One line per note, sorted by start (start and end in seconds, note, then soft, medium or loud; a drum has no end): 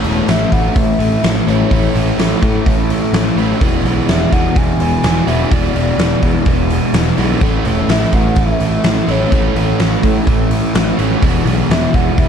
0.00 0.53 A2 loud
0.00 0.52 E3 loud
0.00 0.51 A3 loud
0.00 1.45 A3 medium
0.00 1.45 C#4 medium
0.00 1.48 E4 medium
0.00 1.46 A4 loud
0.00 1.46 C#5 medium
0.00 open hi-hat medium
0.04 0.21 E1 medium
0.04 0.28 A2 medium
0.04 0.28 E3 medium
0.04 0.29 A3 medium
0.28 0.45 A1 medium
0.28 0.51 A2 medium
0.28 0.52 E3 medium
0.28 0.52 A3 loud
0.28 0.54 E5 loud
0.28 snare loud
0.28 open hi-hat medium
0.51 0.68 A1 medium
0.51 0.74 A2 medium
0.51 0.76 E3 medium
0.51 0.75 A3 medium
0.51 0.78 F#5 loud
0.51 kick medium
0.51 open hi-hat medium
0.75 0.92 A1 medium
0.75 0.97 A2 loud
0.75 0.99 E3 loud
0.75 0.99 A3 loud
0.75 1.51 E5 loud
0.75 kick loud
0.75 open hi-hat medium
0.99 1.16 A1 medium
0.99 1.22 A2 medium
0.99 1.23 E3 medium
0.99 1.23 A3 medium
0.99 open hi-hat medium
1.23 1.40 A1 medium
1.23 1.45 A2 loud
1.23 1.47 E3 medium
1.23 1.47 A3 loud
1.23 snare loud
1.23 open hi-hat medium
1.47 1.63 A1 medium
1.47 1.69 A2 medium
1.47 1.71 E3 medium
1.47 1.70 A3 medium
1.47 1.69 A3 medium
1.47 1.70 C#4 medium
1.47 1.72 E4 medium
1.47 1.70 A4 medium
1.47 1.70 C#5 medium
1.47 1.96 C#5 medium
1.47 open hi-hat medium
1.70 1.87 A1 medium
1.70 1.93 A2 medium
1.70 1.94 E3 loud
1.70 3.36 A3 medium
1.70 1.94 A3 loud
1.70 3.36 C#4 medium
1.70 3.38 E4 medium
1.70 3.36 A4 loud
1.70 3.36 C#5 medium
1.70 kick loud
1.70 open hi-hat medium
1.94 2.11 A1 medium
1.94 2.17 A2 medium
1.94 2.19 E3 medium
1.94 2.18 A3 medium
1.94 open hi-hat medium
2.18 2.34 A1 medium
2.18 2.41 A2 medium
2.18 2.42 E3 loud
2.18 2.43 A3 loud
2.18 snare medium
2.18 open hi-hat medium
2.42 2.65 A2 medium
2.42 2.59 A2 medium
2.42 2.67 E3 medium
2.42 2.66 A3 medium
2.42 kick medium
2.42 open hi-hat medium
2.66 2.98 A1 medium
2.66 2.89 A2 loud
2.66 2.90 E3 loud
2.66 2.90 A3 loud
2.66 kick loud
2.66 open hi-hat medium
2.90 3.13 A2 medium
2.90 3.15 E3 medium
2.90 3.15 A3 medium
2.90 open hi-hat medium
3.13 3.29 A1 medium
3.13 3.38 A2 medium
3.13 3.39 E3 loud
3.13 3.39 A3 loud
3.13 snare loud
3.13 open hi-hat medium
3.36 3.53 A1 medium
3.36 3.60 A2 medium
3.36 3.62 E3 medium
3.36 3.61 A3 medium
3.36 3.61 C#4 medium
3.36 3.63 E4 medium
3.36 3.60 A4 medium
3.36 3.60 C#5 medium
3.36 open hi-hat medium
3.61 3.77 E1 medium
3.61 3.85 E2 loud
3.61 3.85 B2 loud
3.61 5.30 E3 medium
3.61 3.86 E3 loud
3.61 5.30 G#3 medium
3.61 5.27 B3 medium
3.61 5.29 E4 medium
3.61 5.28 G#4 loud
3.61 5.26 D5 medium
3.61 kick loud
3.61 open hi-hat medium
3.84 4.00 B1 medium
3.84 4.09 E2 medium
3.84 4.09 B2 medium
3.84 4.10 E3 medium
3.84 open hi-hat soft
4.08 4.25 E1 medium
4.08 4.32 E2 loud
4.08 4.32 B2 loud
4.08 4.33 E3 loud
4.08 4.34 E5 loud
4.08 snare loud
4.08 open hi-hat medium
4.32 4.48 E1 loud
4.32 4.54 E2 medium
4.32 4.55 B2 medium
4.32 4.56 E3 medium
4.32 4.59 F#5 loud
4.32 kick medium
4.32 open hi-hat medium
4.56 4.72 E1 medium
4.56 4.79 E2 medium
4.56 4.80 B2 loud
4.56 4.80 E3 loud
4.56 5.29 G#5 loud
4.56 kick medium
4.56 open hi-hat medium
4.80 4.96 E1 medium
4.80 5.02 E2 medium
4.80 5.03 B2 medium
4.80 5.05 E3 medium
4.80 open hi-hat medium
5.04 5.20 E1 medium
5.04 5.27 E2 medium
5.04 5.28 B2 medium
5.04 5.29 E3 loud
5.04 snare loud
5.04 open hi-hat medium
5.27 5.43 E1 medium
5.27 5.50 E2 medium
5.27 5.51 B2 medium
5.27 5.52 E3 medium
5.27 5.51 E3 medium
5.27 5.52 G#3 medium
5.27 5.51 B3 medium
5.27 5.53 E4 medium
5.27 5.54 G#4 medium
5.27 5.50 D5 medium
5.27 5.54 E5 loud
5.27 open hi-hat medium
5.51 5.68 E1 medium
5.51 5.74 E2 loud
5.51 5.75 B2 medium
5.51 7.19 E3 medium
5.51 5.76 E3 loud
5.51 7.19 G#3 medium
5.51 7.17 B3 medium
5.51 7.18 E4 medium
5.51 7.17 G#4 loud
5.51 6.47 D5 loud
5.51 7.16 D5 medium
5.51 kick loud
5.51 open hi-hat medium
5.75 5.91 E1 medium
5.75 5.98 E2 medium
5.75 5.99 B2 loud
5.75 6.00 E3 medium
5.75 open hi-hat medium
5.98 6.14 E1 medium
5.98 6.22 E2 medium
5.98 6.23 B2 loud
5.98 6.24 E3 loud
5.98 snare loud
5.98 open hi-hat medium
6.22 6.39 E2 medium
6.22 6.45 E2 medium
6.22 6.46 B2 medium
6.22 6.47 E3 medium
6.22 kick medium
6.22 open hi-hat medium
6.46 6.78 E1 medium
6.46 6.69 E2 medium
6.46 6.70 B2 medium
6.46 6.71 E3 loud
6.46 kick loud
6.46 open hi-hat medium
6.70 6.93 E2 medium
6.70 6.93 B2 medium
6.70 6.95 E3 medium
6.70 open hi-hat medium
6.93 7.10 E1 medium
6.93 7.17 E2 medium
6.93 7.18 B2 loud
6.93 7.19 E3 loud
6.93 snare loud
6.93 open hi-hat medium
7.17 7.34 B1 medium
7.17 7.40 E2 medium
7.17 7.41 B2 medium
7.17 7.42 E3 medium
7.17 10.70 E3 medium
7.17 7.41 G#3 medium
7.17 7.41 B3 medium
7.17 7.43 E4 medium
7.17 7.43 G#4 medium
7.17 7.40 D5 medium
7.17 open hi-hat medium
7.41 7.58 A1 medium
7.41 7.65 A2 medium
7.41 7.66 E3 medium
7.41 9.07 A3 medium
7.41 7.66 A3 loud
7.41 9.07 C#4 medium
7.41 9.09 E4 medium
7.41 9.07 A4 loud
7.41 9.07 C#5 loud
7.41 kick loud
7.41 open hi-hat medium
7.65 7.81 E1 medium
7.65 7.89 A2 medium
7.65 7.89 E3 medium
7.65 7.90 A3 medium
7.65 open hi-hat medium
7.88 8.05 A1 medium
7.88 8.12 A2 loud
7.88 8.12 E3 medium
7.88 8.13 A3 medium
7.88 8.16 E5 loud
7.88 snare loud
7.88 open hi-hat medium
8.12 8.29 A1 medium
8.12 8.35 A2 medium
8.12 8.37 E3 medium
8.12 8.36 A3 medium
8.12 8.40 F#5 loud
8.12 kick medium
8.12 open hi-hat medium
8.36 8.53 A1 medium
8.36 8.60 A2 medium
8.36 8.61 E3 medium
8.36 8.61 A3 loud
8.36 9.12 E5 loud
8.36 kick loud
8.36 open hi-hat medium
8.60 8.76 A1 medium
8.60 8.83 A2 medium
8.60 8.85 E3 medium
8.60 8.84 A3 medium
8.60 open hi-hat medium
8.84 9.01 A1 medium
8.84 9.07 A2 loud
8.84 9.09 E3 loud
8.84 9.08 A3 loud
8.84 snare loud
8.84 open hi-hat medium
9.08 9.24 A1 medium
9.08 9.31 A2 medium
9.08 9.32 E3 medium
9.08 9.32 A3 medium
9.08 9.30 A3 medium
9.08 9.31 C#4 medium
9.08 9.32 E4 medium
9.08 9.31 A4 medium
9.08 9.30 C#5 medium
9.08 9.57 C#5 medium
9.08 open hi-hat medium
9.31 9.48 A1 medium
9.31 9.55 A2 medium
9.31 9.56 E3 medium
9.31 10.97 A3 medium
9.31 9.56 A3 loud
9.31 10.97 C#4 medium
9.31 10.99 E4 medium
9.31 10.97 A4 medium
9.31 10.96 C#5 medium
9.31 kick loud
9.31 open hi-hat medium
9.56 9.72 A1 medium
9.56 9.78 A2 medium
9.56 9.79 E3 medium
9.56 9.79 A3 medium
9.56 open hi-hat medium
9.79 9.96 A1 medium
9.79 10.02 A2 medium
9.79 10.03 E3 loud
9.79 10.03 A3 loud
9.79 snare loud
9.79 open hi-hat medium
10.03 10.19 A2 medium
10.03 10.25 A2 medium
10.03 10.27 E3 medium
10.03 10.27 A3 medium
10.03 kick medium
10.03 open hi-hat medium
10.27 10.59 A1 loud
10.27 10.50 A2 loud
10.27 10.51 E3 loud
10.27 10.51 A3 medium
10.27 kick loud
10.27 open hi-hat medium
10.51 10.73 A2 medium
10.51 10.75 E3 medium
10.51 10.74 A3 loud
10.51 open hi-hat medium
10.74 10.91 A1 medium
10.74 10.97 A2 medium
10.74 10.99 E3 loud
10.74 10.99 A3 loud
10.74 snare loud
10.74 open hi-hat medium
10.97 11.15 A1 medium
10.97 11.21 A2 medium
10.97 11.23 E3 medium
10.97 11.22 A3 medium
10.97 11.21 A3 medium
10.97 11.21 C#4 medium
10.97 11.23 E4 medium
10.97 11.21 A4 medium
10.97 11.20 C#5 medium
10.97 open hi-hat medium
11.21 11.39 E1 medium
11.21 11.46 E2 loud
11.21 11.46 B2 loud
11.21 12.28 E3 medium
11.21 11.47 E3 loud
11.21 12.28 G#3 medium
11.21 12.28 B3 loud
11.21 12.28 E4 loud
11.21 12.28 G#4 medium
11.21 12.28 D5 medium
11.21 kick loud
11.21 open hi-hat medium
11.45 11.62 B1 medium
11.45 11.70 E2 medium
11.45 11.70 B2 medium
11.45 11.71 E3 loud
11.45 open hi-hat medium
11.69 11.86 E1 medium
11.69 11.93 E2 medium
11.69 11.94 B2 medium
11.69 11.95 E3 loud
11.69 11.96 E5 loud
11.69 snare loud
11.69 open hi-hat medium
11.94 12.10 E1 medium
11.94 12.16 E2 medium
11.94 12.17 B2 medium
11.94 12.18 E3 medium
11.94 12.20 F#5 loud
11.94 kick medium
11.94 open hi-hat medium
12.17 12.28 E1 medium
12.17 12.28 E2 medium
12.17 12.28 B2 medium
12.17 12.28 E3 medium
12.17 12.28 E5 loud
12.17 kick loud
12.17 open hi-hat medium